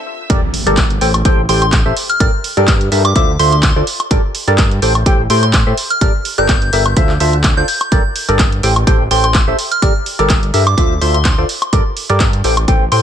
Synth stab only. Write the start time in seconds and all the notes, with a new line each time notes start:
0.30 G4 A4 A#4 D5
0.67 G4 A4 A#4 D5
1.01 G4 A4 C5 G5
1.25 G4 A4 C5 G5
1.49 G4 A4 C5 G5
1.86 G4 A4 C5 E5
2.20 G4 A4 A#4 D5
2.57 G4 A4 A#4 D5
2.92 G4 A4 A#4 E5
3.16 F4 A4 C5 E5
3.39 F4 A4 C5 E5
3.76 F4 A4 C5 D5
4.11 G4 A4 A#4 D5
4.48 G4 A4 A#4 D5
4.82 G4 A4 C5 G5
5.06 G4 A4 C5 G5
5.30 G4 A4 C5 G5
5.67 G4 A4 C5 E5
6.01 G4 A4 A#4 D5
6.38 G4 A4 A#4 D5
6.73 G4 A4 A#4 E5
6.97 F4 A4 C5 E5
7.20 F4 A4 C5 E5
7.57 F4 A4 C5 D5
7.92 G4 A4 A#4 D5
8.28 G4 A4 A#4 D5
8.63 G4 A4 C5 G5
8.87 G4 A4 C5 G5
9.11 G4 A4 C5 G5
9.48 G4 A4 C5 E5
9.82 G4 A4 A#4 D5
10.19 G4 A4 A#4 D5
10.54 G4 A4 A#4 E5
10.77 F4 A4 C5 E5
11.01 F4 A4 C5 E5
11.38 F4 A4 C5 D5
11.73 G4 A4 A#4 D5
12.10 G4 A4 A#4 D5
12.44 G4 A4 C5 G5
12.68 G4 A4 C5 G5
12.92 G4 A4 C5 G5